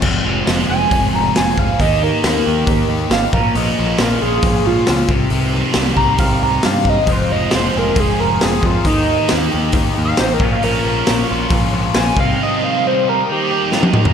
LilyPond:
<<
  \new Staff \with { instrumentName = "Analog synth pad" } { \time 4/4 \key f \minor \tempo 4 = 136 << { r1 | r1 | r1 | r1 |
<c'' f'' c'''>1 | <ees'' g'' ees'''>2.~ <ees'' g'' ees'''>8 <des'' f'' des'''>8~ | <des'' f'' des'''>2.~ <des'' f'' des'''>8 <ees'' g'' ees'''>8~ | <ees'' g'' ees'''>1 | } \\ { r1 | r1 | r1 | r1 |
aes'1 | bes'1~ | bes'2.~ bes'8 c''8~ | c''2 bes'2 | } >> }
  \new Staff \with { instrumentName = "Analog synth lead" } { \time 4/4 \key f \minor r4. aes''4 bes''8 aes''8 f''8 | ees''8 bes'2 r8 f''8 bes'8 | ees''4 bes'8 aes'4 f'4 r8 | r4. bes''8 f''8 bes''8 f''8 ees''8 |
c''8 ees''8 c''8 bes'8 aes'8 bes'8 aes'8 f'8 | ees'2 \tuplet 3/2 { r4 f''8 c''8 bes'8 f''8 } | \tuplet 3/2 { bes'8 bes'8 bes'8 } r2 aes''8 f''8 | ees''8 f''8 c''8 bes'8 g'4 r4 | }
  \new Staff \with { instrumentName = "Overdriven electric guitar" } { \time 4/4 \key f \minor f,8 f8 aes8 aes'8 c'8 aes'8 c'8 f8 | ees8 ees8 bes8 g'8 ees'8 g'8 ees'8 bes,8 | bes,8 f8 bes8 f'8 des'8 f'8 des'8 c8 | c8 ees8 g8 g'8 c'8 g'8 c'8 ees8 |
f,8 f8 aes8 aes'8 c'8 aes'8 c'8 f8 | ees8 ees8 bes8 g'8 ees'8 g'8 ees'8 bes,8 | bes,8 f8 bes8 f'8 des'8 f'8 des'8 c8 | c8 ees8 g8 g'8 ees8 g'8 ees'8 ees8 | }
  \new Staff \with { instrumentName = "Overdriven electric guitar" } { \time 4/4 \key f \minor <f aes c' f'>1 | <ees bes ees' g'>2.~ <ees bes ees' g'>8 <bes, f bes des' f'>8~ | <bes, f bes des' f'>2.~ <bes, f bes des' f'>8 <c ees g c' g'>8~ | <c ees g c' g'>1 |
<f aes c' f'>1 | <ees bes ees' g'>2.~ <ees bes ees' g'>8 <bes, f bes des' f'>8~ | <bes, f bes des' f'>2.~ <bes, f bes des' f'>8 <c g c' ees'>8~ | <c g c' ees'>2 <ees g bes ees'>2 | }
  \new Staff \with { instrumentName = "Picked electric bass" } { \clef bass \time 4/4 \key f \minor f,,8 f,,8 f,,8 f,,8 f,,8 f,,8 f,,8 f,,8 | ees,4 ees,8 ees,8 ees,8 ees,8 aes,,8 bes,,8 | bes,,8 bes,,8 bes,,8 bes,,8 bes,,8 bes,,8 des,8 c,8 | c,4 c,8 c,8 c,8 c,8 g,4 |
f,,8 f,,8 f,,8 f,,8 f,,8 f,,8 f,,8 f,8 | ees,4 ees,8 ees,8 ees,8 ees,8 a,,8 bes,,8 | bes,,8 bes,,8 bes,,8 bes,,8 bes,,8 bes,,8 bes,,8 c,8 | r1 | }
  \new DrumStaff \with { instrumentName = "Drums" } \drummode { \time 4/4 <cymc bd>4 <hho sn>4 <hho bd>4 <hho sn>8 bd8 | <hho bd>4 <hho sn>4 <hho bd>4 <hho sn>8 bd8 | hho4 <hho sn>4 <hho bd>4 <hho sn>8 bd8 | hho4 <hho sn>8 bd8 <hho bd>4 <hho sn>8 bd8 |
<hho bd>4 <hho sn>4 <hho bd>4 <hho sn>8 bd8 | <hho bd>4 <hho sn>4 <hho bd>4 <hho sn>8 bd8 | hho4 <hho sn>4 <hho bd>4 <hho sn>8 bd8 | r4 r4 r4 sn16 tommh16 toml16 tomfh16 | }
>>